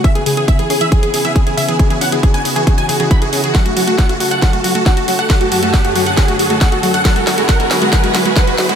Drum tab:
HH |xxoxxxoxxxoxxxox|xxoxxxoxxxoxxxox|xxoxxxoxxxoxxxox|xxoxxxoxxxoxxxox|
SD |----------------|----------------|o---o---o---o---|o---o---o---o---|
BD |o---o---o---o---|o---o---o---o---|o---o---o---o---|o---o---o---o---|

HH |xxoxxxoxxxoxxxox|
SD |o-o-o-o-o-o-o-o-|
BD |o---o---o---o---|